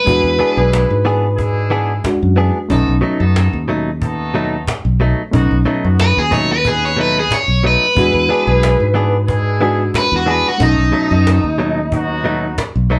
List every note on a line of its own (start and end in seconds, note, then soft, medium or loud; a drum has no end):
0.00 1.69 B4 medium
0.05 0.22 E2 medium
0.05 1.99 G#3 medium
0.05 0.31 G#3 medium
0.05 0.31 D4 medium
0.05 2.00 D4 medium
0.05 0.32 E4 medium
0.05 2.01 F#4 medium
0.05 0.31 G#4 medium
0.05 cajon bass loud
0.24 0.37 E2 medium
0.39 0.60 E3 medium
0.39 0.60 B3 medium
0.39 0.60 D4 medium
0.39 0.61 G#4 medium
0.39 cajon slap soft
0.56 0.84 B1 medium
0.56 0.98 G#3 medium
0.56 0.97 D4 medium
0.56 0.98 E4 medium
0.56 0.98 G#4 medium
0.73 cajon slap loud
0.90 1.99 G#2 medium
1.05 1.26 E3 medium
1.05 1.26 B3 medium
1.05 1.27 D4 medium
1.05 1.27 G#4 loud
1.05 cajon slap soft
1.36 2.03 G#3 medium
1.36 2.03 D4 medium
1.36 2.03 E4 medium
1.36 2.03 G#4 loud
1.36 cajon bass medium
1.36 cajon slap soft
1.70 1.92 E3 medium
1.70 1.92 B3 medium
1.70 1.92 D4 medium
1.70 1.92 G#4 medium
1.70 cajon slap soft
2.04 2.70 G#3 medium
2.04 2.70 D4 medium
2.04 2.71 F#4 medium
2.04 cajon bass medium
2.04 cajon slap loud
2.23 2.49 F#2 medium
2.36 2.57 E3 medium
2.36 2.58 B3 medium
2.36 2.58 D4 medium
2.36 2.58 G#4 medium
2.36 cajon slap soft
2.69 2.85 B1 medium
2.69 5.28 A3 medium
2.69 2.96 A3 medium
2.69 2.95 B3 medium
2.69 5.29 C#4 medium
2.69 2.95 D#4 medium
2.69 5.30 D#4 medium
2.69 2.96 A4 loud
2.69 cajon bass loud
2.88 3.00 B1 medium
3.01 3.23 B2 medium
3.01 3.23 F#3 medium
3.01 3.23 A3 medium
3.01 3.24 D#4 medium
3.01 cajon slap soft
3.19 3.47 F#2 loud
3.19 3.61 A3 medium
3.19 3.60 B3 medium
3.19 3.60 D#4 medium
3.19 3.61 A4 loud
3.36 cajon slap loud
3.53 4.62 D#2 medium
3.68 3.89 B2 medium
3.68 3.89 F#3 medium
3.68 3.90 A3 medium
3.68 3.90 D#4 loud
3.68 cajon slap soft
4.02 4.68 A3 medium
4.02 4.68 B3 medium
4.02 4.68 D#4 medium
4.02 4.68 A4 loud
4.02 cajon bass medium
4.34 4.55 B2 medium
4.34 4.55 F#3 medium
4.34 4.56 A3 medium
4.34 4.56 D#4 medium
4.34 cajon slap soft
4.67 cajon bass medium
4.67 cajon slap loud
4.85 5.12 B1 medium
5.00 5.21 B2 medium
5.00 5.21 F#3 medium
5.00 5.22 A3 medium
5.00 5.22 D#4 medium
5.00 cajon slap soft
5.31 5.48 B1 medium
5.31 5.59 F#3 medium
5.31 7.92 A3 medium
5.31 5.59 B3 medium
5.31 7.92 C#4 medium
5.31 7.93 D#4 medium
5.31 5.59 D#4 medium
5.31 5.59 F#4 medium
5.31 cajon bass loud
5.51 5.64 B1 medium
5.66 5.87 B2 medium
5.66 5.87 F#3 medium
5.66 5.87 A3 medium
5.66 5.87 D#4 medium
5.66 cajon slap soft
5.83 6.11 F#2 medium
5.83 6.25 F#3 medium
5.83 6.24 B3 medium
5.83 6.24 D#4 medium
5.83 6.25 F#4 medium
6.00 6.17 B4 medium
6.00 cajon slap loud
6.17 7.26 D#2 medium
6.17 6.32 G#4 medium
6.31 6.52 B2 medium
6.31 6.53 F#3 medium
6.31 6.53 A3 medium
6.31 6.53 D#4 medium
6.31 6.50 C#5 medium
6.31 cajon bass medium
6.53 6.66 B4 medium
6.65 7.31 B3 medium
6.65 7.31 D#4 medium
6.65 6.83 G#4 medium
6.65 7.31 B4 medium
6.65 cajon bass medium
6.85 6.99 C#5 medium
6.97 7.18 B2 medium
6.97 7.19 F#3 medium
6.97 7.19 A3 medium
6.97 7.19 D#4 medium
6.97 cajon slap soft
7.01 7.17 B4 medium
7.19 7.32 G#4 medium
7.31 7.64 C#5 medium
7.31 cajon bass medium
7.31 cajon slap loud
7.48 7.75 B1 medium
7.63 7.84 B2 medium
7.63 7.85 F#3 medium
7.63 7.85 A3 medium
7.63 7.85 D#4 medium
7.63 9.59 B4 loud
7.63 cajon slap soft
7.95 8.11 E2 medium
7.95 9.57 G#3 medium
7.95 8.23 G#3 medium
7.95 9.58 D4 medium
7.95 8.23 D4 medium
7.95 8.22 E4 medium
7.95 9.59 F#4 medium
7.95 8.23 G#4 medium
7.95 cajon bass loud
8.14 8.27 E2 medium
8.29 8.50 E3 medium
8.29 8.50 B3 medium
8.29 8.51 D4 medium
8.29 8.51 G#4 medium
8.29 cajon slap soft
8.47 8.74 B1 medium
8.47 8.88 G#3 medium
8.47 8.88 D4 medium
8.47 8.88 E4 medium
8.47 8.88 G#4 loud
8.63 cajon slap loud
8.80 9.89 G#2 medium
8.94 9.16 E3 medium
8.94 9.16 B3 medium
8.94 9.16 D4 medium
8.94 9.16 G#4 medium
8.94 cajon slap soft
9.27 9.94 G#3 medium
9.27 9.94 D4 medium
9.27 9.94 E4 medium
9.27 9.94 G#4 loud
9.27 cajon bass medium
9.60 9.82 E3 medium
9.60 10.60 G#3 medium
9.60 9.82 B3 medium
9.60 10.60 D4 soft
9.60 9.82 D4 medium
9.60 10.61 F#4 medium
9.60 9.83 G#4 loud
9.60 cajon slap soft
9.94 10.13 B4 loud
9.94 cajon bass medium
9.94 cajon slap loud
10.12 10.39 E2 medium
10.16 10.29 F#4 medium
10.26 10.47 E3 medium
10.26 10.48 B3 medium
10.26 10.48 D4 medium
10.26 10.48 G#4 medium
10.26 cajon slap soft
10.31 10.46 B4 medium
10.48 10.63 F#4 medium
10.58 10.75 B1 medium
10.58 12.99 A3 medium
10.58 10.86 A3 medium
10.58 10.85 B3 medium
10.58 12.99 C#4 medium
10.58 10.85 D#4 medium
10.58 12.99 D#4 medium
10.58 10.86 A4 medium
10.58 cajon bass loud
10.63 12.55 D#4 medium
10.78 10.91 B1 medium
10.92 11.13 B2 medium
10.92 11.14 F#3 medium
10.92 11.14 A3 medium
10.92 11.14 D#4 medium
10.92 cajon slap soft
11.11 11.38 F#2 loud
11.11 11.52 A3 medium
11.11 11.52 B3 medium
11.11 11.52 D#4 medium
11.11 11.52 A4 medium
11.27 cajon slap loud
11.44 12.52 D#2 medium
11.58 11.79 B2 medium
11.58 11.80 F#3 medium
11.58 11.80 A3 medium
11.58 11.80 D#4 loud
11.58 cajon slap soft
11.92 12.58 F#3 medium
11.92 12.58 B3 medium
11.92 12.58 D#4 medium
11.92 12.58 F#4 loud
11.92 cajon bass medium
12.24 12.45 B2 medium
12.24 12.46 F#3 medium
12.24 12.46 A3 medium
12.24 12.46 D#4 loud
12.24 cajon slap soft
12.58 cajon bass medium
12.58 cajon slap loud
12.76 12.99 B1 medium
12.90 12.99 B2 medium
12.90 12.99 F#3 medium
12.90 12.99 A3 medium
12.90 12.99 D#4 medium
12.90 cajon slap soft